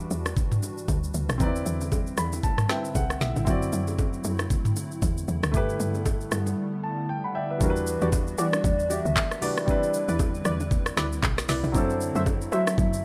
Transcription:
Already playing: analog synth pad E3 G3 D4 F#4 B4, grand piano G3 E4 F#4 D5
0.00 shaker
0.11 log drum bass E2, high bongo, shaker
0.26 cross-stick, low bongo, shaker
0.36 kick, low bongo, low conga, shaker
0.52 mid tom, shaker
0.63 low bongo, shaker
0.78 shaker
0.88 log drum bass D2, kick, high bongo, shaker
1.04 shaker
1.14 log drum bass D2, low conga, shaker
1.29 log drum bass B1, cross-stick, low bongo, shaker
1.38 log drum bass E2, analog synth pad D3 C4 E4, grand piano C4 D#4 B4, kick, low conga, shaker
1.43 grand piano E4 D5
1.56 shaker
1.66 log drum bass E2, shaker
1.81 high bongo, shaker
1.92 kick, high bongo, shaker
2.07 shaker
2.17 log drum bass E2, grand piano B5, cross-stick, high bongo, shaker
2.32 low bongo, shaker
2.43 grand piano A5, kick, low bongo, low conga, shaker
2.58 cross-stick, mid tom, shaker
2.68 grand piano C4 E4 B4 E5 G5, cross-stick, snare, low bongo, shaker
2.85 shaker
2.95 log drum bass C2, grand piano F#5, kick, high bongo, shaker
3.10 cross-stick, shaker
3.21 log drum bass B1, grand piano E5, snare, low conga, shaker
3.36 log drum bass A1, low bongo, shaker
3.45 log drum bass F#2, analog synth pad F#3 A3, grand piano C4 E4 F#4, kick, low conga, shaker
3.50 grand piano D5
3.62 shaker
3.73 log drum bass F#2, shaker
3.87 high bongo, shaker
3.99 kick, high bongo, shaker
4.13 shaker
4.24 log drum bass F#2, high bongo, shaker
4.39 cross-stick, low bongo, shaker
4.50 kick, low bongo, low conga, shaker
4.65 mid tom, shaker
4.76 low bongo, shaker
4.91 shaker
5.02 log drum bass E2, kick, high bongo, shaker
5.18 shaker
5.28 log drum bass E2, low conga, shaker
5.43 log drum bass D2, cross-stick, low bongo, shaker
5.52 log drum bass G2, analog synth pad D3 G3 A3 B3, grand piano A3 E4 G4, kick, low conga, shaker
5.57 grand piano B4
5.69 shaker
5.80 log drum bass G2, shaker
5.95 high bongo, shaker
6.06 kick, high bongo, shaker
6.21 shaker
6.31 log drum bass G2, cross-stick, high bongo, shaker
6.46 low bongo, shaker
6.84 grand piano A5
7.09 grand piano G5
7.24 grand piano F#5 B5
7.35 grand piano D5 E5 G5
7.50 grand piano B4 E5
7.58 log drum bass E2, analog synth pad E3 G3 B3 D4 F#4, grand piano G3 D4 E4, soft synth lead B4, kick, low conga, shaker
7.62 grand piano F#4 A#4
7.70 grand piano B4
7.76 shaker
7.87 shaker
8.01 log drum bass E2, synth stab F#4 G4 D5, high bongo, shaker
8.12 kick, high bongo, shaker
8.27 shaker
8.38 log drum bass E3, synth stab F#4 G4 D5, soft synth lead D5, shaker
8.53 cross-stick, low bongo, shaker
8.64 log drum bass E2, soft synth lead D5, kick, low bongo, low conga, shaker
8.79 shaker
8.90 synth stab F#4 G4 D5, soft synth lead E5, low bongo, shaker
9.05 log drum bass D2, shaker
9.16 kick, clap, high bongo, shaker
9.31 cross-stick, shaker
9.41 grand piano G3 D4 E4 F#4 B4, synth stab F#4 G4 D5, soft synth lead D5, open hi-hat, low conga, shaker
9.57 cross-stick, low bongo, shaker
9.65 analog synth pad D3 C4 E4 B4, grand piano G3 C4 D4, kick, low conga, shaker
9.69 grand piano E4 B4
9.83 shaker
9.94 shaker
10.08 log drum bass E2, synth stab E4 B4 D5, high bongo, shaker
10.19 kick, high bongo, shaker
10.34 shaker
10.45 log drum bass E2, synth stab E4 B4 D5, cross-stick, shaker
10.60 low bongo, shaker
10.71 kick, low bongo, low conga, shaker
10.86 cross-stick, shaker
10.97 log drum bass D2, synth stab E4 B4 D5, cross-stick, snare, low bongo, shaker
11.12 shaker
11.23 log drum bass B1, kick, clap, high bongo, shaker
11.38 cross-stick, snare, shaker
11.48 log drum bass C2, synth stab E4 B4 D5, snare, open hi-hat, low conga, shaker
11.64 log drum bass C2, low bongo, shaker
11.72 log drum bass F#2, grand piano F#3 C4 D4, analog synth pad F#3 A3, kick, low conga, shaker
11.76 grand piano E4 A4, soft synth lead C5
11.90 shaker
12.01 shaker
12.15 log drum bass F#2, synth stab F#4 C5 E5, high bongo, shaker
12.26 kick, high bongo, shaker
12.41 shaker
12.52 log drum bass F#3, synth stab F#4 C5 E5, soft synth lead E5, shaker
12.67 cross-stick, low bongo, shaker
12.78 log drum bass F#2, soft synth lead E5, kick, low bongo, low conga, shaker
12.93 shaker

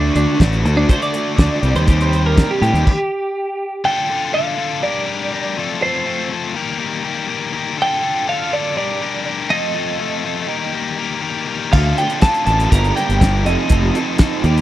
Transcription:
Already playing: distorted electric guitar D3 A3 D4 F#4, clean electric guitar D4
0.15 fingered electric bass D2, clean electric guitar D4, closed hi-hat
0.40 fingered electric bass A1, distorted electric guitar D3 A3 D4 F#4, kick, snare, closed hi-hat
0.53 closed hi-hat
0.65 fingered electric bass D2, distorted electric guitar A3 D4 F#4, closed hi-hat
0.77 clean electric guitar D4
0.88 distorted electric guitar D3 A3 D4 F#4, clean electric guitar C5, kick, closed hi-hat
1.02 clean electric guitar D5, closed hi-hat
1.14 overdriven electric guitar A3, closed hi-hat
1.36 fingered electric bass D2, distorted electric guitar D3 A3 D4 F#4, kick, snare, closed hi-hat
1.62 fingered electric bass C2, distorted electric guitar C3 D#3 G3 C4 G4, closed hi-hat
1.75 fingered electric bass D#2, clean electric guitar C5, closed hi-hat
1.85 distorted electric guitar C3 D#3 G3 C4 G4, kick, closed hi-hat
2.01 clean electric guitar C5, closed hi-hat
2.13 closed hi-hat
2.26 clean electric guitar A#4
2.35 distorted electric guitar C3 D#3 G3 C4 G4, overdriven electric guitar D4, kick, snare, closed hi-hat
2.51 clean electric guitar G4
2.60 fingered electric bass A2, distorted electric guitar G3 C4 G4, clean electric guitar G4, closed hi-hat
2.73 fingered electric bass D#2, closed hi-hat
2.87 kick, crash
3.85 distorted electric guitar D3 D4 F4 A4, clean electric guitar G5
4.10 distorted electric guitar D3 D4 F4 A4
4.34 distorted electric guitar D3 D4 F4 A4, clean electric guitar F5
4.57 distorted electric guitar D3 D4 F4 A4
4.82 distorted electric guitar G3 D4 G4 A#4, clean electric guitar D5
5.06 distorted electric guitar G3 D4 G4 A#4
5.32 distorted electric guitar G3 D4 G4 A#4
5.57 distorted electric guitar F3 A3 C4 F4 A4
5.82 distorted electric guitar F3 A3 C4 F4 A4, clean electric guitar C5
6.06 distorted electric guitar F3 A3 C4 F4 A4
6.31 distorted electric guitar F3 A3 C4 F4 A4
6.55 distorted electric guitar D#3 G3 A#3 G4 A#4
6.78 distorted electric guitar D#3 G3 A#3 G4 A#4
7.03 distorted electric guitar D#3 G3 A#3 G4 A#4
7.28 distorted electric guitar D#3 G3 A#3 G4 A#4
7.52 distorted electric guitar D#3 G3 A#3 G4 A#4
7.77 distorted electric guitar D3 D4 F4 A4
7.82 clean electric guitar G5
8.03 distorted electric guitar D3 D4 F4 A4
8.26 distorted electric guitar D3 D4 F4 A4, clean electric guitar F5
8.52 distorted electric guitar D3 D4 F4 A4, clean electric guitar D5
8.77 distorted electric guitar G3 D4 G4 A#4, clean electric guitar D5
9.01 distorted electric guitar G3 D4 G4 A#4
9.25 distorted electric guitar G3 D4 G4 A#4
9.50 distorted electric guitar F3 A3 C4 F4 A4, clean electric guitar D#5
9.74 distorted electric guitar F3 A3 C4 F4 A4
9.99 distorted electric guitar F3 A3 C4 F4 A4
10.24 distorted electric guitar F3 A3 C4 F4 A4
10.47 distorted electric guitar D#3 G3 A#3 G4 A#4
10.74 distorted electric guitar D#3 G3 A#3 G4 A#4
10.97 distorted electric guitar D#3 G3 A#3 G4 A#4
11.21 distorted electric guitar D#3 G3 A#3 G4 A#4
11.47 distorted electric guitar D#3 G3 A#3 G4 A#4
11.72 fingered electric bass D2, distorted electric guitar D3 D4 F4 A4, overdriven electric guitar F3 A3, clean electric guitar F5, kick, crash
11.96 distorted electric guitar D3 D4 F4 A4, overdriven electric guitar F3 A3, clean electric guitar G5, closed hi-hat
12.10 closed hi-hat
12.21 distorted electric guitar D3 D4 F4 A4, overdriven electric guitar F3 A3, clean electric guitar A5, kick, snare, closed hi-hat
12.34 closed hi-hat
12.46 fingered electric bass A1, distorted electric guitar D3 D4 F4 A4, overdriven electric guitar F3 A3, clean electric guitar A5, closed hi-hat
12.60 closed hi-hat
12.66 distorted electric guitar G3, clean electric guitar A5
12.70 fingered electric bass G1, overdriven electric guitar A#3, distorted electric guitar D4 G4 A#4, clean electric guitar A#5, kick, closed hi-hat
12.84 closed hi-hat
12.95 distorted electric guitar G3 D4 G4 A#4, overdriven electric guitar A#3, clean electric guitar G5, closed hi-hat
13.09 fingered electric bass G1, closed hi-hat
13.20 distorted electric guitar G3 D4 G4 A#4, overdriven electric guitar A#3, kick, snare, closed hi-hat
13.45 fingered electric bass F1, distorted electric guitar F3 A3 C4 F4 A4, overdriven electric guitar D#4, clean electric guitar D#5, closed hi-hat
13.68 fingered electric bass F1, distorted electric guitar F3 A3 C4 F4 A4, overdriven electric guitar D#4, kick, closed hi-hat
13.94 distorted electric guitar F3 A3 C4 F4 A4, overdriven electric guitar D#4, closed hi-hat
14.18 distorted electric guitar F3 A3 C4 F4 A4, overdriven electric guitar D#4, kick, snare, closed hi-hat
14.44 fingered electric bass D#2, distorted electric guitar D#3 G3 A#3 G4 A#4, overdriven electric guitar D#4, closed hi-hat
14.58 closed hi-hat

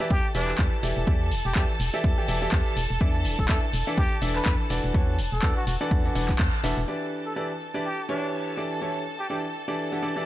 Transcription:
Already playing: violin section A4 A5
0.00 grand piano E3 E4 G4 B4 D5 E5
0.11 fm bass E2, muted trumpet G4, kick
0.35 fm bass E1, grand piano E3 E4 G4 B4 D5 E5, muted trumpet D4, open hi-hat
0.48 clap
0.58 fm bass E2, kick, clap
0.83 fm bass E1, grand piano E3 E4 G4 A4 D5 E5, open hi-hat
0.97 fm bass E1
1.07 fm bass E2, grand piano E3 E4 G4 A4 D5 E5, kick
1.31 fm bass E1, open hi-hat
1.45 fm bass E1, muted trumpet G4
1.55 fm bass E2, grand piano E3 E4 G4 A4 D5 E5, muted trumpet G4, kick, clap
1.80 fm bass E1, open hi-hat
1.94 grand piano E3 E4 G4 A4 D5 E5
2.04 fm bass E2, kick
2.18 grand piano E3 E4 G4 A4 D5 G5
2.28 fm bass E1, grand piano E3 E4 G4 A4 D5 E5, open hi-hat
2.42 grand piano E3 E4 G4 A4 D5 E5
2.52 fm bass E2, kick, clap
2.77 fm bass E1, open hi-hat
2.91 fm bass E1
3.01 fm bass E2, grand piano E3 D4 E4 A4 D5 E5, kick
3.25 fm bass E1, open hi-hat
3.39 fm bass E1, muted trumpet A4, kick
3.49 fm bass E2, grand piano E3 D4 E4 A4 D5 E5, muted trumpet A4, kick, clap
3.73 fm bass E1, open hi-hat
3.87 grand piano E3 D4 E4 A4 D5 E5
3.98 fm bass E2, muted trumpet G4, kick
4.22 fm bass E1, grand piano E3 D4 E4 A4 D5 E5, open hi-hat
4.35 muted trumpet B4, clap
4.45 fm bass E2, kick, clap
4.70 fm bass E1, grand piano E3 D4 F#4 A4 B4 D5, open hi-hat
4.84 fm bass E1
4.94 fm bass E2, grand piano E3 D4 F#4 A4 B4 C#5, kick
5.19 fm bass E1, open hi-hat
5.32 fm bass E1, muted trumpet A4
5.42 fm bass E2, grand piano E3 D4 F#4 A4 B4 D5, kick, clap
5.57 muted trumpet F#4
5.67 fm bass E1, muted trumpet F#4, open hi-hat
5.81 grand piano E3 D4 F#4 A4 B4 D5
5.91 fm bass E2, kick
6.05 grand piano E3 D4 F#4 A4 B4 F#5
6.15 fm bass E1, grand piano E3 D4 F#4 A4 B4 F#5, open hi-hat
6.29 kick, clap
6.39 fm bass E2, kick, clap
6.64 fm bass E1, grand piano E3 D4 F#4 A4 B4 E5, open hi-hat
6.78 fm bass E1
6.88 grand piano E3 D4 E4 G4 B4 D5, violin section A4 A5
7.26 muted trumpet A4
7.36 grand piano E3 D4 E4 G4 B4 D5, muted trumpet A4
7.74 grand piano E3 D4 E4 G4 B4 D5
7.85 muted trumpet G4
8.09 grand piano E3 D4 E4 G4 B4 C#5, muted trumpet D4
8.57 grand piano E3 D4 E4 G4 A4 D5
8.82 grand piano E3 D4 E4 G4 A4 C#5
9.20 muted trumpet G4
9.30 grand piano E3 D4 E4 G4 A4 D5, muted trumpet G4
9.68 grand piano E3 D4 E4 G4 A4 D5
9.92 grand piano E3 D4 E4 G4 A4 F#5
10.02 grand piano E3 D4 E4 G4 A4 D5
10.16 grand piano E3 D4 E4 G4 A4 D5

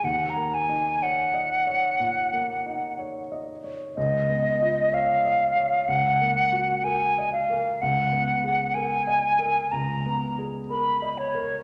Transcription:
0.04 grand piano D#2, flute F#5
0.30 flute A#5
0.36 grand piano A#3
0.54 flute G#5
0.69 grand piano D#4
1.02 grand piano C#5, flute F#5
1.34 grand piano D#5
1.67 grand piano C#5
2.00 grand piano A#2
2.33 grand piano A#3
2.66 grand piano D#4
2.99 grand piano C#5
3.32 grand piano D#5
3.64 grand piano C#5
3.96 grand piano C#2, flute D#5
4.29 grand piano B3
4.62 grand piano F4
4.92 grand piano C#5, flute F5
5.25 grand piano D#5
5.57 grand piano C#5
5.87 grand piano C#2, flute F#5
6.21 grand piano A#3
6.52 grand piano F#4
6.84 grand piano A#4, flute G#5
7.18 grand piano D#5
7.33 flute F5
7.50 grand piano A#4
7.81 grand piano C#2, flute F#5
8.12 grand piano B3
8.44 grand piano G#4
8.74 grand piano A#4, flute G#5
9.07 grand piano D#5
9.39 grand piano A#4
9.72 grand piano C#2, flute A#5
10.06 grand piano B3
10.38 grand piano G#4
10.70 grand piano A#4, flute B5
11.02 grand piano D#5
11.18 flute C#5
11.35 grand piano A#4

